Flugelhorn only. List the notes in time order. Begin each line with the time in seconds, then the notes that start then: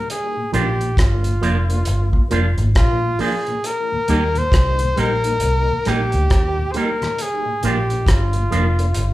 0.11 G#4
0.54 G4
0.99 F4
2.77 F4
3.21 G#4
3.66 A#4
4.38 C5
5.00 A#4
5.89 G4
6.72 C5
6.78 A#4
7.22 G#4
7.66 G4
8.10 F4